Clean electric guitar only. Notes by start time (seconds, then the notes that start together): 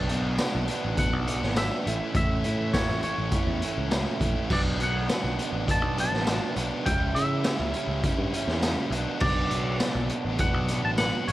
Already playing: A5
0.99 F#5
1.58 E5
2.17 E5
2.73 C#5
3.04 C#5
4.53 D5
4.84 F#5
5.71 A5
6.00 A5
6.85 G5
7.15 E5
9.21 D5
10.40 F#5
10.85 A5
10.98 F#5
11.28 C#5